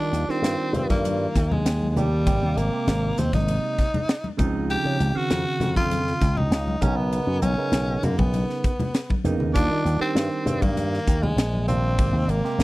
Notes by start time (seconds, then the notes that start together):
Already playing: D#3 G3 D4 F4
0.12 D#2, hi-hat pedal, ride
0.28 D#3 G3 C4 D4 F4, muted slap bass stroke, snare
0.42 G2, snare, hi-hat pedal, ride
0.73 G2, hi-hat pedal, ride, low conga
0.90 G2 A#3, kick, snare, ride, high conga
1.05 hi-hat pedal, ride, high conga
1.35 D#2, kick, snare, hi-hat pedal, ride
1.52 G#3, high conga, low conga
1.65 D#2, snare, hi-hat pedal, ride
1.82 high conga
1.90 G#3
1.95 D#3 G3 D4 G4, hi-hat pedal, ride, low conga
2.26 G#1 C3 G3 A#3 G4, kick, hi-hat pedal, ride
2.42 D#2
2.57 G#1 A#3, hi-hat pedal, ride
2.72 C3 G#3 A#3 G4
2.87 G#1, snare, hi-hat pedal, ride
3.18 D#2 C4, snare, hi-hat pedal, ride, low conga
3.33 G#1 D#4, kick, snare, ride, high conga
3.48 hi-hat pedal, ride, high conga
3.79 kick, snare, hi-hat pedal, ride
3.94 ride, high conga, low conga
4.09 snare, hi-hat pedal, ride
4.24 high conga
4.37 C#2 C#3 F3 C4 D#4, kick, hi-hat pedal, ride, low conga
4.70 G4, hi-hat pedal, ride
4.85 C#3
5.00 C#2, hi-hat pedal, ride
5.13 C#3 D#3 C4 F#4 F5, muted slap bass stroke
5.30 F2, snare, hi-hat pedal, ride
5.60 F2, snare, hi-hat pedal, ride, low conga
5.76 F2 F4, kick, snare, ride, high conga
5.91 hi-hat pedal, ride, high conga
6.07 snare
6.21 C#2, kick, snare, hi-hat pedal, ride
6.37 D#4, high conga, low conga
6.51 C#2, snare, hi-hat pedal, ride
6.67 high conga
6.81 B1 C#3 B3 C#4 D#4 A#4, kick, hi-hat pedal, ride, low conga
6.96 B3
7.13 hi-hat pedal, ride
7.27 F#2
7.42 B1 C#4, hi-hat pedal, ride, high conga
7.57 C#3 B3 D#4 A#4
7.72 B1, snare, hi-hat pedal, ride
8.03 F#2 A#3, hi-hat pedal, ride, low conga
8.18 B1 B3, kick, ride, high conga
8.34 hi-hat pedal, ride, high conga
8.50 snare
8.64 kick, hi-hat pedal, ride
8.80 ride, high conga, low conga
8.94 snare, hi-hat pedal, ride
9.10 kick, high conga
9.24 F2 C#3 A#3 B3 D#4, hi-hat pedal, ride, low conga
9.40 D#2, low conga
9.53 D#2 D#3 G3 D4 F4, kick, hi-hat pedal, ride
9.71 D#3
9.85 D#2, hi-hat pedal, ride
9.99 D#3 G3 C4 D4 G4, muted slap bass stroke
10.15 G2, snare, hi-hat pedal, ride
10.46 G2, hi-hat pedal, ride, low conga
10.62 G2 A#3, kick, ride, high conga
10.77 hi-hat pedal, ride, high conga
10.94 snare
11.07 D#2, kick, hi-hat pedal, ride
11.23 G#3, high conga, low conga
11.36 A#1, snare, hi-hat pedal, ride
11.54 high conga
11.67 D#3 G3 C4 D4 F4, hi-hat pedal, ride, low conga
11.98 G#1 C3 G#3 A#3 G4, kick, hi-hat pedal, ride
12.12 D#2
12.27 G#1 A#3, hi-hat pedal, ride
12.43 C3 G#3 A#3 G4, snare
12.58 G#1, snare, hi-hat pedal, ride